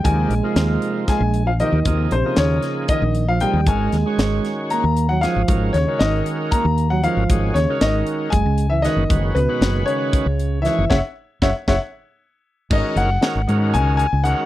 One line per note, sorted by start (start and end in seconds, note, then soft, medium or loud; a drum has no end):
0.03 0.25 D#2 medium
0.03 0.34 C3 medium
0.03 0.34 F3 medium
0.03 1.03 G#3 medium
0.03 0.34 A#3 medium
0.03 0.34 D#4 medium
0.03 0.35 G4 medium
0.03 1.08 G#5 medium
0.03 kick medium
0.03 closed hi-hat medium
0.30 0.40 A#1 medium
0.30 closed hi-hat soft
0.43 1.22 C3 medium
0.43 1.22 F3 medium
0.43 1.22 A#3 medium
0.43 1.22 D#4 medium
0.43 1.23 F4 medium
0.56 0.76 D#2 medium
0.56 snare medium
0.56 closed hi-hat medium
0.82 closed hi-hat medium
1.08 1.44 G#3 medium
1.08 1.48 G#5 medium
1.08 kick loud
1.08 snare soft
1.08 closed hi-hat medium
1.20 1.62 A#1 medium
1.34 closed hi-hat medium
1.46 1.52 F3 medium
1.46 1.52 F5 medium
1.59 1.79 C3 medium
1.59 2.08 D#3 medium
1.59 1.79 F3 medium
1.59 1.80 A#3 medium
1.59 1.80 D#4 medium
1.59 1.80 G4 medium
1.59 2.08 D#5 medium
1.59 closed hi-hat medium
1.72 1.83 D#2 medium
1.85 2.06 D#2 medium
1.85 2.15 C3 medium
1.85 2.15 F3 medium
1.85 2.16 A#3 medium
1.85 2.16 D#4 medium
1.85 2.16 G#4 medium
1.85 kick medium
1.85 closed hi-hat medium
2.11 2.22 A#1 medium
2.11 2.36 C3 medium
2.11 2.39 C5 medium
2.11 closed hi-hat medium
2.24 3.03 C#3 medium
2.24 3.03 F3 medium
2.24 3.04 A#3 medium
2.24 3.04 D#4 medium
2.24 3.04 G#4 medium
2.36 2.58 D#2 medium
2.36 2.86 C#3 medium
2.36 2.86 C#5 medium
2.36 snare medium
2.36 closed hi-hat medium
2.62 snare soft
2.62 closed hi-hat medium
2.88 3.26 D#3 medium
2.88 3.25 D#5 medium
2.88 kick loud
2.88 closed hi-hat medium
3.02 3.43 A#1 medium
3.15 closed hi-hat medium
3.28 3.40 F3 medium
3.28 3.42 F5 medium
3.40 3.60 C3 medium
3.40 3.61 F3 medium
3.40 3.66 G3 medium
3.40 3.61 A#3 medium
3.40 3.61 D#4 medium
3.40 3.61 G#4 medium
3.40 3.65 G5 medium
3.40 closed hi-hat medium
3.53 3.68 D#2 medium
3.66 3.88 G#1 medium
3.66 3.96 D#3 medium
3.66 3.97 G#3 medium
3.66 4.54 G#3 medium
3.66 3.97 C#4 medium
3.66 3.97 F#4 medium
3.66 3.97 A#4 medium
3.66 4.74 G#5 medium
3.66 kick loud
3.66 closed hi-hat medium
3.92 4.03 D#2 medium
3.92 snare soft
3.92 closed hi-hat medium
4.06 4.84 D#3 medium
4.06 4.84 G#3 medium
4.06 4.85 C#4 medium
4.06 4.85 F#4 medium
4.06 4.85 C#5 medium
4.18 4.39 G#1 medium
4.18 snare loud
4.18 closed hi-hat medium
4.45 snare soft
4.45 closed hi-hat medium
4.70 5.07 A#3 medium
4.70 5.11 A#5 medium
4.70 closed hi-hat medium
4.84 5.25 D#2 medium
4.97 closed hi-hat medium
5.09 5.22 F#3 medium
5.09 5.22 F#5 medium
5.21 5.42 D#3 medium
5.21 5.71 F3 medium
5.21 5.42 G#3 medium
5.21 5.42 C#4 medium
5.21 5.42 F#4 medium
5.21 5.43 G#4 medium
5.21 5.70 F5 medium
5.21 snare soft
5.21 closed hi-hat soft
5.36 5.46 G#1 medium
5.48 5.69 G#1 medium
5.48 5.78 D#3 medium
5.48 5.78 G#3 medium
5.48 5.78 C#4 medium
5.48 5.78 F#4 medium
5.48 5.78 A#4 medium
5.48 kick medium
5.48 closed hi-hat medium
5.73 5.84 D#2 medium
5.73 5.99 C#3 medium
5.73 6.00 C#5 medium
5.73 snare soft
5.73 closed hi-hat medium
5.87 6.65 D#3 medium
5.87 6.66 G#3 medium
5.87 6.66 C#4 medium
5.87 6.66 F#4 medium
5.87 6.66 A#4 medium
5.99 6.21 G#1 medium
5.99 6.49 D#3 medium
5.99 6.53 D#5 medium
5.99 snare loud
5.99 closed hi-hat medium
6.26 closed hi-hat medium
6.51 6.88 A#3 medium
6.51 6.91 A#5 medium
6.51 kick loud
6.51 closed hi-hat medium
6.65 7.06 D#2 medium
6.78 closed hi-hat medium
6.90 7.03 F#3 medium
6.90 7.04 F#5 medium
7.04 7.24 D#3 medium
7.04 7.52 F3 medium
7.04 7.24 G#3 medium
7.04 7.24 C#4 medium
7.04 7.24 F#4 medium
7.04 7.24 A#4 medium
7.04 7.52 F5 medium
7.04 closed hi-hat medium
7.17 7.27 G#1 medium
7.30 7.50 G#1 medium
7.30 7.59 D#3 medium
7.30 7.59 G#3 medium
7.30 7.59 C#4 medium
7.30 7.60 F#4 medium
7.30 7.60 G#4 medium
7.30 kick loud
7.30 closed hi-hat medium
7.54 7.65 D#2 medium
7.54 7.79 C#3 medium
7.54 7.81 C#5 medium
7.54 snare soft
7.54 closed hi-hat medium
7.69 8.33 D#3 medium
7.69 8.33 G#3 medium
7.69 8.33 C#4 medium
7.69 8.34 F#4 medium
7.69 8.34 A#4 medium
7.80 8.02 G#1 medium
7.80 8.29 D#3 medium
7.80 8.34 D#5 medium
7.80 snare medium
7.80 closed hi-hat medium
8.07 closed hi-hat medium
8.30 8.43 F#1 medium
8.30 8.68 G#3 medium
8.30 8.71 G#5 medium
8.30 kick loud
8.30 closed hi-hat medium
8.46 8.87 C#2 medium
8.58 closed hi-hat medium
8.70 8.82 E3 medium
8.70 8.84 E5 medium
8.82 9.31 D#3 medium
8.82 9.04 D#3 medium
8.82 9.04 G#3 medium
8.82 9.04 C#4 medium
8.82 9.04 F#4 medium
8.82 9.04 B4 medium
8.82 9.36 D#5 medium
8.82 snare soft
8.82 closed hi-hat medium
8.96 9.07 F#1 medium
9.09 9.31 F#1 medium
9.09 9.39 D#3 medium
9.09 9.39 G#3 medium
9.09 9.39 C#4 medium
9.09 9.39 F#4 medium
9.09 9.40 B4 medium
9.09 kick loud
9.09 closed hi-hat medium
9.34 9.46 C#2 medium
9.34 9.83 B2 medium
9.34 9.88 B4 medium
9.34 closed hi-hat medium
9.48 10.26 D#3 medium
9.48 10.27 G#3 medium
9.48 10.27 C#4 medium
9.48 10.27 F#4 medium
9.48 10.27 B4 medium
9.61 9.82 F#1 medium
9.61 snare medium
9.61 closed hi-hat medium
9.85 10.60 C#3 medium
9.85 10.66 C#5 medium
9.85 closed hi-hat medium
10.13 kick loud
10.13 closed hi-hat medium
10.26 10.67 C#2 medium
10.40 closed hi-hat medium
10.62 10.85 D#3 medium
10.62 10.87 E3 medium
10.62 10.85 G#3 medium
10.62 10.85 C#4 medium
10.62 10.89 E5 medium
10.62 snare soft
10.62 closed hi-hat medium
10.66 10.85 F#4 medium
10.66 10.85 C#5 medium
10.78 10.88 F#1 medium
10.90 11.00 F#1 medium
10.90 10.97 C#3 medium
10.90 10.99 C#4 medium
10.90 10.99 E4 medium
10.90 10.99 F#4 medium
10.90 10.98 C#5 medium
10.90 10.99 E5 medium
10.90 10.99 F#5 medium
10.90 kick medium
10.90 snare medium
11.42 11.52 F#1 medium
11.42 11.48 C#3 medium
11.42 11.51 C#4 medium
11.42 11.50 E4 medium
11.42 11.50 F#4 medium
11.42 11.51 C#5 medium
11.42 11.50 E5 medium
11.42 11.50 F#5 medium
11.42 kick medium
11.42 snare medium
11.68 11.77 F#1 medium
11.68 11.74 C#3 medium
11.68 11.76 C#4 medium
11.68 11.76 E4 medium
11.68 11.76 F#4 medium
11.68 11.76 C#5 medium
11.68 11.76 E5 medium
11.68 11.76 F#5 medium
11.68 kick medium
11.68 snare medium
12.70 12.81 G#1 medium
12.70 13.10 D#3 medium
12.70 13.10 G#3 medium
12.70 13.10 C#4 medium
12.70 13.10 F#4 medium
12.70 13.10 A#4 medium
12.70 12.98 D#5 medium
12.70 kick loud
12.70 crash medium
12.96 13.17 F#1 medium
12.96 13.76 F#5 medium
12.96 closed hi-hat medium
13.21 13.41 D#3 medium
13.21 13.41 G#3 medium
13.21 13.42 C#4 medium
13.21 13.42 F#4 medium
13.21 13.42 A#4 medium
13.21 snare loud
13.21 closed hi-hat medium
13.35 13.46 G#1 medium
13.47 13.76 G#2 medium
13.47 14.06 D#3 medium
13.47 14.06 G#3 medium
13.47 14.07 C#4 medium
13.47 14.07 F#4 medium
13.47 14.07 A#4 medium
13.47 closed hi-hat medium
13.74 14.05 C#2 medium
13.74 13.96 G#5 loud
13.74 closed hi-hat medium
13.97 14.25 G#5 medium
13.97 closed hi-hat medium
14.13 14.33 C#2 medium
14.24 14.44 D#3 medium
14.24 14.44 G#3 medium
14.24 14.44 C#4 medium
14.24 14.45 F#4 medium
14.24 14.45 A#4 medium
14.24 14.46 F#5 medium
14.24 closed hi-hat medium